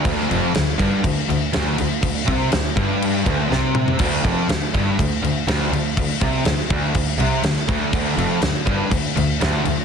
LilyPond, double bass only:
\new Staff \with { instrumentName = "Double bass" } { \clef bass \time 4/4 \key d \minor \tempo 4 = 122 d,8 f,,8 d,8 g,,8 d,8 d,8 d,8 d,8 | d,8 c,8 d,8 g,,4 d,8 c,4 | d,8 f,,8 d,8 g,,8 d,8 d,8 d,8 d,8 | d,8 c,8 d,8 d,8 d,8 c,8 d,8 d,8 |
d,8 f,,8 d,8 g,,8 d,8 d,8 d,8 d,8 | }